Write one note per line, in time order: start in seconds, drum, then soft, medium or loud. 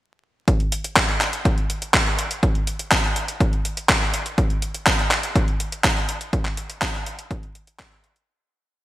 0.48 kick loud
0.48 closed hi-hat medium
0.60 closed hi-hat soft
0.72 closed hi-hat loud
0.84 closed hi-hat medium
0.96 kick loud
0.96 clap loud
0.96 closed hi-hat medium
1.09 closed hi-hat soft
1.21 clap medium
1.21 closed hi-hat medium
1.33 closed hi-hat medium
1.45 kick loud
1.45 closed hi-hat medium
1.58 closed hi-hat soft
1.70 closed hi-hat loud
1.82 closed hi-hat medium
1.94 kick loud
1.94 clap loud
1.94 closed hi-hat medium
2.06 closed hi-hat soft
2.19 closed hi-hat medium
2.31 closed hi-hat medium
2.43 kick loud
2.43 closed hi-hat medium
2.55 closed hi-hat soft
2.67 closed hi-hat loud
2.79 closed hi-hat medium
2.92 kick loud
2.92 clap loud
2.92 closed hi-hat medium
3.04 closed hi-hat soft
3.16 closed hi-hat medium
3.28 closed hi-hat medium
3.40 kick loud
3.40 closed hi-hat medium
3.53 closed hi-hat soft
3.65 closed hi-hat medium
3.77 closed hi-hat medium
3.89 kick loud
3.89 clap loud
3.89 closed hi-hat medium
4.02 closed hi-hat soft
4.14 closed hi-hat medium
4.26 closed hi-hat medium
4.38 kick loud
4.38 closed hi-hat medium
4.50 closed hi-hat soft
4.62 closed hi-hat medium
4.75 closed hi-hat soft
4.87 kick loud
4.87 clap loud
4.87 closed hi-hat soft
4.99 closed hi-hat soft
5.11 clap medium
5.11 closed hi-hat medium
5.23 closed hi-hat soft
5.36 kick loud
5.36 closed hi-hat medium
5.48 closed hi-hat soft
5.60 closed hi-hat medium
5.72 closed hi-hat medium
5.84 kick loud
5.84 clap loud
5.84 closed hi-hat soft
5.97 closed hi-hat soft
6.09 closed hi-hat medium
6.21 closed hi-hat medium
6.33 kick loud
6.33 closed hi-hat medium
6.45 clap soft
6.45 closed hi-hat soft
6.57 closed hi-hat medium
6.70 closed hi-hat soft
6.82 kick loud
6.82 clap loud
6.82 closed hi-hat soft
6.94 closed hi-hat soft
7.06 closed hi-hat medium
7.19 closed hi-hat medium
7.31 kick loud
7.31 closed hi-hat medium
7.43 closed hi-hat soft
7.55 closed hi-hat medium
7.67 closed hi-hat soft
7.79 kick loud
7.79 clap loud
7.79 closed hi-hat soft
7.92 closed hi-hat soft
8.04 closed hi-hat medium
8.16 closed hi-hat medium